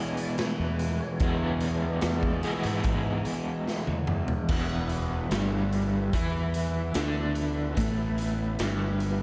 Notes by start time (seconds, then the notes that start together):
Already playing: E2 B2 E3 G#3 B3 G#4
0.00 C#5
0.17 D5, closed hi-hat
0.27 E3
0.38 C#5, snare, closed hi-hat
0.58 E2 B4
0.79 closed hi-hat
0.88 E2
1.00 C#5
1.20 E2 B2 E3 G#3 B3, kick, closed hi-hat
1.24 G#4
1.49 B2
1.60 closed hi-hat
1.82 D5
2.01 E2, snare, closed hi-hat
2.11 E3
2.23 kick
2.43 B2 E3 G#3 B3 G#4 E5, closed hi-hat
2.47 E2
2.63 G#2, snare, closed hi-hat
2.73 E3
2.84 E3 G#3 B3, kick, closed hi-hat
3.25 E3, closed hi-hat
3.37 E2
3.68 snare
3.87 E2, high tom
3.98 B2
4.07 mid tom
4.28 floor tom
4.49 E1 E2 E3 B3 E4 B4 E5, kick, crash
4.89 closed hi-hat
5.31 G1 G2 G3, snare, closed hi-hat
5.72 closed hi-hat
6.13 E2 E3 E4, kick, closed hi-hat
6.54 closed hi-hat
6.94 D2 D3 D4, snare, closed hi-hat
7.35 closed hi-hat
7.77 A1 A2 A3, kick, closed hi-hat
8.18 closed hi-hat
8.59 G1 G2 G3, snare, closed hi-hat
9.00 closed hi-hat